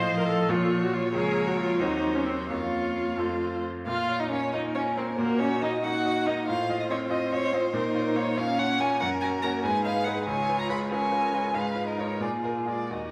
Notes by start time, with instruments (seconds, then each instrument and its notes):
Already playing: grand piano A2 F3 F4 D#5, cello F3, viola C5, violin D#5 F5
0.19 viola A#4
0.28 viola A4
0.49 grand piano A#2 F3 F4 C#5, viola F4, violin C#5
0.83 viola F#4
0.93 viola F4
1.14 grand piano C#2 A#3 F4 C#5, cello F3, viola G#4, violin A#4
1.47 viola F#4
1.57 viola F4
1.79 grand piano D#2 C4 F#4 C5, cello F#3, viola D#4, violin C5
2.15 viola C#4
2.26 viola C4
2.50 grand piano F2 C#4 F4 A#4, cello A#3, viola F4, violin C#5 F5
3.17 grand piano F2 C4 F4 A4, cello A3, violin C5
3.86 grand piano A#2, violin F4 F5, viola F4
4.09 grand piano F4 C#5
4.20 violin D#4 D#5, viola D#4
4.30 grand piano A#3 F4 C#5, violin C#4 C#5, viola C#4
4.52 grand piano A#3 F4 C#5, violin D#4 D#5, viola D#4, cello A#4
4.75 viola C#4, violin C#4 C#5, grand piano F4 C#5
4.96 grand piano A#3 F4 C#5, violin C4 C5, viola C4
5.18 grand piano A#2, viola A#3, violin A#3 A#4, cello F#4
5.39 viola C#4, violin C#4 C#5, grand piano D#4 D#5
5.61 grand piano A#3 D#4 D#5, viola D#4, violin D#4 D#5
5.83 grand piano A#3 D#4 D#5, cello D#4, viola F#4, violin F#4 F#5
6.06 grand piano D#4 D#5
6.26 grand piano A#3 D#4 D#5, violin D#4 D#5, viola D#4
6.47 grand piano A2, cello F4, viola F4, violin C5 F5
6.69 grand piano F4 D#5
6.80 violin D#5
6.89 grand piano C4 F4 D#5, violin C#5
7.10 grand piano C4 F4 D#5, cello C4, violin D#5
7.32 grand piano F4 D#5, violin C#5
7.53 grand piano C4 F4 D#5, violin C5
7.73 grand piano A#2, cello D#4, viola D#4, violin A#4
7.95 grand piano F4 C#5
8.15 grand piano A#3 F4 C#5, violin C#5
8.37 grand piano A#3 F4 C#5, cello C#4, viola C#4, violin C#5 F5
8.58 grand piano F4 C#5, violin F#5
8.80 grand piano A#3 F4 C#5, violin G#5
9.00 grand piano F#2, viola C#4, violin A#4 F#5, cello A#4
9.21 grand piano F#4 C#5, violin G#5
9.42 grand piano A#3 F#4 C#5, violin A#5
9.63 grand piano G#2, viola D#4, cello G#4, violin B4 G#5
9.84 grand piano D#4 B4, violin F5
10.04 grand piano G#3 D#4 B4, violin F#5
10.25 grand piano C#2, viola F4, cello F4, violin C#5 G#5
10.49 grand piano F4 B4
10.59 violin A#5
10.69 grand piano G#3 F4 B4, violin B5
10.90 grand piano G#3 F4 B4, viola C#4, cello A#4, violin C#5 G#5
11.11 grand piano F4 B4
11.33 grand piano G#3 F4 B4
11.54 grand piano G#2, viola D#4, cello G#4, violin B4 F5
11.75 grand piano F4 B4
11.87 violin A#4 D#5
11.98 grand piano G#3 F4 B4, violin C#5
12.20 grand piano A#2, cello F4, viola F4, violin G#4 D5
12.43 grand piano F4 A#4, violin A#4
12.66 grand piano G#3 F4 A#4, violin D5
12.91 grand piano D#2, viola D#4, cello F#4, violin F#4 D#5